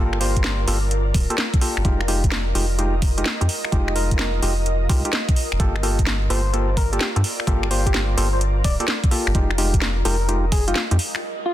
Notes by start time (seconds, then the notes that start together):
Already playing: G1 A#3 F4 G4 A4 A#4 D5
0.13 finger snap
0.20 A#3 F4 G4 C5, open hi-hat
0.36 kick, closed hi-hat
0.44 snare
0.68 G1 A#3 F4 G4 A4, open hi-hat
0.91 closed hi-hat
1.14 D1, kick, open hi-hat
1.30 A#3 F4 G4 A4, closed hi-hat
1.38 snare
1.54 kick, closed hi-hat
1.61 A#3 F4 G4 A4, open hi-hat
1.77 G1, finger snap
1.85 F1 G#3 D#4 F4 G4, kick, closed hi-hat
2.01 finger snap
2.08 G#3 D#4 F4 G4 D#5, open hi-hat
2.24 kick, closed hi-hat
2.32 snare
2.55 F1 G#3 D#4 F4 G4, open hi-hat
2.79 G#3 D#4 F4 G4, closed hi-hat
3.02 kick, open hi-hat
3.18 G#3 D#4 F4 G4, closed hi-hat
3.26 snare
3.41 F2 G#3 D#4 F4 G4, closed hi-hat
3.49 open hi-hat
3.65 finger snap
3.72 F1 G#3 D#4 F4 G4, kick, closed hi-hat
3.88 finger snap
3.96 G#3 D#4 F4 A#4, open hi-hat
4.11 kick, closed hi-hat
4.19 snare
4.42 F1 G#3 D#4 F4 G4, open hi-hat
4.66 closed hi-hat
4.89 C2 G#3 D#4 F4 G4, kick, open hi-hat
5.05 G#3 D#4 F4 G4, closed hi-hat
5.13 snare
5.29 kick, closed hi-hat
5.36 open hi-hat
5.52 F1, finger snap
5.60 G1 A#3 F4 G4 A4, kick, closed hi-hat
5.76 A#4, finger snap
5.83 A#3 F4 G4 A4, open hi-hat
5.98 D5, kick, closed hi-hat
6.07 snare
6.30 G1 A#3 F4 G4 A4 C5, open hi-hat
6.53 A#3 F4 G4 A4, closed hi-hat
6.77 A#4, kick, open hi-hat
6.93 A#3 F4 G4 A4, closed hi-hat
7.01 snare
7.16 G2 A#3 F4 G4 A4, closed hi-hat
7.24 open hi-hat
7.40 finger snap
7.47 G1 A#3 F4 G4 A4, kick, closed hi-hat
7.63 finger snap
7.71 A#3 F4 G4 C5, open hi-hat
7.86 G4, kick, closed hi-hat
7.94 snare
8.17 G1 A#3 F4 G4 A4 C5, open hi-hat
8.33 C5
8.41 closed hi-hat
8.64 D1 D5, kick, open hi-hat
8.80 A#3 F4 G4 A4 D5, closed hi-hat
8.88 snare
9.04 kick, closed hi-hat
9.11 A#3 F4 G4 A4, open hi-hat
9.27 G1, finger snap
9.35 F1 G#3 D#4 F4 G4, kick, closed hi-hat, riser
9.51 finger snap
9.58 G#3 D#4 F4 G4, open hi-hat
9.74 kick, closed hi-hat
9.82 snare
9.86 D#5
10.05 F1 G#3 D#4 F4 G4 A#4, open hi-hat
10.29 G#3 D#4 F4 G4, closed hi-hat
10.52 G#4, kick, open hi-hat
10.68 G#3 D#4 F4 G4, closed hi-hat
10.76 snare
10.91 F2 G#3 D#4 F4 G4, closed hi-hat
10.99 open hi-hat
11.15 finger snap
11.46 F4